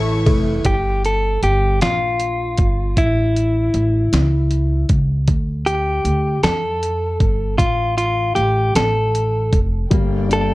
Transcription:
Already playing: upright bass A1, steel-string acoustic guitar E3, upright piano A3 E4, clean electric guitar A4, string section A4 C#5 E5 C#6
0.26 upright bass F1, upright piano A3, steel-string acoustic guitar A3, kick, ride
0.65 upright bass G1, clean electric guitar G4, kick, closed hi-hat
1.05 clean electric guitar A4, closed hi-hat
1.43 upright bass G1, clean electric guitar G4, closed hi-hat
1.81 upright bass A#1, clean electric guitar F4, snare, closed hi-hat
2.20 closed hi-hat
2.58 upright bass G1, kick, closed hi-hat
2.97 upright bass A1, clean electric guitar E4, kick, closed hi-hat
3.36 closed hi-hat
3.74 upright bass A1, closed hi-hat
4.13 upright bass C#2, snare, closed hi-hat
4.51 closed hi-hat
4.89 upright bass C#2, kick, closed hi-hat
5.28 upright bass D2, kick, closed hi-hat
5.66 clean electric guitar G4, closed hi-hat
6.05 upright bass D2, closed hi-hat
6.43 upright bass F2, clean electric guitar A4, snare, closed hi-hat
6.83 closed hi-hat
7.20 upright bass G1, kick, closed hi-hat
7.58 upright bass A1, clean electric guitar F4, kick, closed hi-hat
7.98 clean electric guitar F4, closed hi-hat
8.35 upright bass A1, clean electric guitar G4, closed hi-hat
8.75 upright bass A1, clean electric guitar A4, snare, closed hi-hat
9.15 closed hi-hat
9.53 upright bass F1, kick, closed hi-hat
9.90 upright bass G1, upright piano G3, string section A#3 D5 G5, steel-string acoustic guitar A#3, kick, closed hi-hat
10.29 upright piano D4, steel-string acoustic guitar D4, closed hi-hat
10.33 clean electric guitar A4

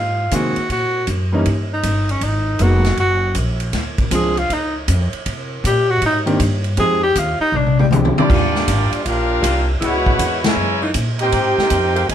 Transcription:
Already playing: upright bass G#2, tenor saxophone F4
0.31 upright bass C3, grand piano D#3 G#3 A#3 C4 G#4, tenor saxophone F#4, kick, hi-hat pedal, ride
0.56 muted upright bass stroke, ride
0.69 upright bass A#2, tenor saxophone F#4, kick, ride
1.07 upright bass F#2, kick, hi-hat pedal, ride
1.32 grand piano E3 G3 A#3 C#4 D#4
1.46 upright bass G2, kick, ride
1.74 tenor saxophone D#4
1.83 upright bass G1, kick, hi-hat pedal, ride
2.09 tenor saxophone C#4, ride
2.21 upright bass G#1, tenor saxophone D#4, kick, ride
2.59 upright bass F1, grand piano F#3 G#3 A#3 B3 D#4, tenor saxophone F#4, kick, hi-hat pedal, ride
2.84 snare, ride
2.97 upright bass F#1, tenor saxophone F#4, kick, ride
3.35 upright bass A#1, kick, hi-hat pedal, ride
3.60 ride
3.73 upright bass D2, kick, snare, ride
3.98 kick, ride
4.11 upright bass C2, grand piano F3 G#3 C4 D4 F4, kick, hi-hat pedal, ride
4.15 tenor saxophone G#4
4.37 tenor saxophone F4, ride
4.50 upright bass C#2, tenor saxophone D#4, kick, ride
4.88 upright bass F2, kick, hi-hat pedal, ride
5.13 muted upright bass stroke, ride
5.26 upright bass C3, kick, ride
5.64 upright bass A#2, tenor saxophone G4, kick, hi-hat pedal, ride
5.90 tenor saxophone F#4
6.01 upright bass G#2, kick, ride
6.06 tenor saxophone D#4
6.26 grand piano D#3 A#3 C4 D4 G4, ride
6.40 upright bass G2, kick, hi-hat pedal, ride
6.64 ride
6.77 upright bass F2, grand piano F3 G#3 C4 D#4 G4, tenor saxophone G#4, kick, ride
7.03 tenor saxophone G4
7.15 upright bass D#2, tenor saxophone F4, kick, hi-hat pedal, ride
7.40 tenor saxophone D#4, muted upright bass stroke
7.52 upright bass A#1, mid tom
7.57 tenor saxophone D4
7.66 mid tom
7.79 tenor saxophone G3, mid tom
7.91 upright bass C2, grand piano F3 G#3 C4 D4 G4, hi-hat pedal, high tom
8.05 high tom
8.16 trombone section G3 A#3 D4, trumpet section A#3 F4 G4 D5, muted upright bass stroke, high tom
8.29 upright bass D#2, saxophone section D#3 G3 D4 F4, kick, crash
8.55 snare
8.67 upright bass G#1, kick, hi-hat pedal, ride
8.91 muted upright bass stroke, ride
9.04 upright bass A#1, trombone section A#3 D4 F4, trumpet section D4 G4 A#4 F5, kick, ride
9.41 upright bass C2, saxophone section D#3 G3 D4 F4, kick, hi-hat pedal, ride
9.80 upright bass C#2, saxophone section C#3 G#3 B3 E4, trombone section G#3 B3 F#4, kick, ride
9.84 trumpet section E4 B4 C#5 F#5
10.06 kick
10.19 upright bass E2, kick, hi-hat pedal, ride
10.44 trombone section C#3 E3 G#3, trumpet section E4 A#4 C#5 G#5, snare, ride
10.56 upright bass F#2
10.81 saxophone section E3 G#3 A#3 D#4
10.94 upright bass A#2, kick, hi-hat pedal, ride
11.19 trombone section C4 D#4 G4, trumpet section D#4 A#4 C5 G5, ride
11.32 upright bass G#2, kick, ride
11.58 muted upright bass stroke, snare
11.70 upright bass F2, kick, hi-hat pedal, ride
11.95 saxophone section C3 G#3 A#3 G4, ride
12.08 upright bass D#2, trombone section C3 D#3 G#3, trumpet section D#4 A#4 C5, kick, ride

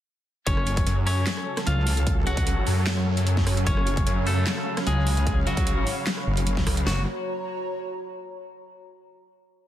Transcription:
0.46 wobble bass F#1, supersaw synth C#3 F#3 C#4 A4, analog synth pad F#3, clean electric guitar C#4 C#5, kick, closed hi-hat
0.57 cross-stick
0.67 closed hi-hat
0.77 kick, closed hi-hat
0.87 detuned saw bass F#2, closed hi-hat
1.06 detuned saw bass F#2, clean electric guitar C#4 C#5, analog synth pad C#5, open hi-hat
1.20 analog synth pad A5
1.27 snare, clap, closed hi-hat
1.37 cross-stick
1.57 cross-stick, snare, closed hi-hat
1.66 wobble bass C#2, clean electric guitar F4 F5, closed hi-hat
1.87 open hi-hat
1.97 closed hi-hat
2.07 kick, closed hi-hat
2.27 detuned saw bass C#2, clean electric guitar F#4 F#5, closed hi-hat
2.37 kick, closed hi-hat
2.47 closed hi-hat
2.67 detuned saw bass F#2, open hi-hat
2.87 snare, clap, closed hi-hat
2.97 cross-stick
3.17 closed hi-hat
3.27 detuned saw bass F#2, closed hi-hat
3.37 kick, snare
3.47 cross-stick, open hi-hat
3.57 closed hi-hat
3.67 wobble bass F#1, clean electric guitar C#4 C#5, supersaw synth F5, kick, closed hi-hat
3.77 cross-stick
3.87 analog synth pad B5, closed hi-hat
3.97 kick, closed hi-hat
4.07 detuned saw bass F#2, closed hi-hat
4.27 detuned saw bass F#2, clean electric guitar A3 A4, open hi-hat
4.47 snare, clap, closed hi-hat
4.57 cross-stick
4.77 cross-stick, snare, closed hi-hat
4.87 wobble bass C#2, clean electric guitar G#3 G#4, closed hi-hat
5.07 open hi-hat
5.17 closed hi-hat
5.27 kick, closed hi-hat
5.47 detuned saw bass C#2, clean electric guitar F#3 F#4, closed hi-hat
5.57 kick, closed hi-hat
5.67 closed hi-hat
5.87 open hi-hat
6.07 snare, clap, closed hi-hat
6.17 cross-stick
6.27 wobble bass F#1
6.37 closed hi-hat
6.47 closed hi-hat
6.57 kick, snare
6.67 detuned saw bass C#2, cross-stick, open hi-hat
6.77 closed hi-hat
6.87 wobble bass F#1, supersaw synth C#3 F#3 A#3 F#4, analog synth pad F#4, clean electric guitar F#4, snare
6.93 analog synth pad C#5
6.99 analog synth pad A#5

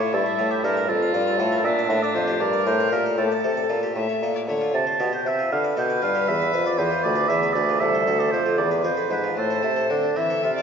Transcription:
Already playing: harpsichord A2, violin E4, oboe C#5
0.00 harpsichord F4
0.13 harpsichord G2, bassoon G2, oboe A4
0.26 harpsichord E5
0.38 bassoon A2, harpsichord A2 C#5
0.51 oboe G4, harpsichord E5
0.64 bassoon G2, harpsichord G2 A4, oboe A#4
0.77 harpsichord A#4
0.88 bassoon F2, harpsichord F2, violin F4, oboe A4
1.03 harpsichord F5
1.14 bassoon G2, harpsichord G2 D5
1.27 harpsichord F5
1.39 bassoon A2, harpsichord A2 A4
1.52 harpsichord A#4
1.64 bassoon A#2, harpsichord A#2, violin D4, oboe E5
1.79 harpsichord D5
1.89 bassoon A2, harpsichord A2 A#4
2.03 oboe D5, harpsichord D5
2.14 bassoon F2, harpsichord F2 F4, oboe C5
2.28 harpsichord G4
2.40 bassoon G2, harpsichord G2, violin A#4, oboe D5
2.53 harpsichord D5
2.65 bassoon A2, harpsichord A2 A#4, oboe C5
2.80 harpsichord D5
2.92 bassoon A#2, harpsichord A#2 G4, oboe A#4
3.06 harpsichord A4
3.17 bassoon A2, harpsichord A2, oboe A4, violin A4
3.26 oboe G4
3.32 oboe A4, harpsichord D5
3.44 bassoon C3, harpsichord C3 A4
3.57 harpsichord D5
3.70 bassoon A#2, harpsichord A#2 F4
3.83 harpsichord G4
3.95 bassoon A2, harpsichord A2, violin E5
4.09 harpsichord C#5
4.22 bassoon A#2, harpsichord A#2 A4
4.35 harpsichord C#5, violin D5
4.48 bassoon D3, harpsichord D3 E4, violin C#5
4.61 harpsichord F4
4.74 bassoon C3, harpsichord C3, oboe A5
4.87 harpsichord C5
5.00 harpsichord B2 G4, bassoon B2
5.13 harpsichord C5, oboe G5
5.25 bassoon C3, harpsichord C3 E4, oboe E5
5.39 harpsichord F4
5.51 bassoon D3, harpsichord D3, violin B4, oboe F5
5.64 harpsichord D5
5.77 harpsichord B2 A4, bassoon B2, oboe G5
5.90 harpsichord D5
6.02 bassoon G2, harpsichord G2 F4, oboe F5
6.15 harpsichord G4
6.27 harpsichord E2, bassoon E2, oboe E5
6.42 harpsichord B4
6.54 bassoon F2, harpsichord F2 G#4
6.66 harpsichord B4, oboe D5
6.78 bassoon E2, harpsichord E2 E4, oboe C5
6.91 harpsichord F4
7.03 harpsichord D2, bassoon D2, oboe D5
7.16 harpsichord B4
7.28 bassoon E2, harpsichord E2 G#4, oboe E5
7.43 harpsichord B4
7.53 bassoon D2, harpsichord D2 E4, oboe D5
7.69 harpsichord F4
7.80 bassoon C2, harpsichord C2, violin A4, oboe E5
7.95 harpsichord C5
8.06 bassoon D2, harpsichord D2 A4
8.19 harpsichord C5, oboe D5
8.31 bassoon F2, harpsichord F2 E4, oboe C5
8.46 harpsichord F4
8.58 bassoon E2, harpsichord E2, violin B4, oboe D5
8.71 harpsichord B4
8.84 bassoon F2, harpsichord F2 G#4, oboe C5
8.97 harpsichord B4
9.10 bassoon G#2, harpsichord G#2 E4, oboe B4
9.24 harpsichord F4
9.37 bassoon A2, harpsichord A2, oboe A4, violin C5
9.50 harpsichord A4
9.63 harpsichord C3 E4, bassoon C3
9.76 harpsichord A4
9.90 bassoon D3, harpsichord D3 C4, oboe D4
10.03 harpsichord D4
10.16 harpsichord E3 C4, bassoon E3, oboe E4, violin E5
10.30 harpsichord A4
10.43 harpsichord C3 E4, bassoon C3, oboe F4
10.56 harpsichord A4, violin D5

